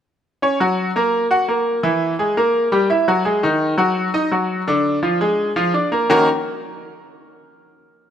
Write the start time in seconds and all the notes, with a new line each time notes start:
0.42 C#4 C#5
0.60 F#3 F#4
0.96 A#3 A#4
1.31 F#4 F#5
1.48 A#3 A#4
1.83 E3 E4
2.19 G#3 G#4
2.37 A#3 A#4
2.72 G3 G4
2.90 E4 E5
3.08 F#3 F#4
3.25 G#3 G#4
3.43 D#3 D#4
3.78 F#3 F#4
4.14 D#4 D#5
4.32 F#3 F#4
4.67 D3 D4
5.03 F3 F4
5.21 G#3 G#4
5.56 F3 F4
5.74 D4 D5
5.92 A#3 A#4
6.10 D#3 A#3 C#4 D#4 F#4 A#4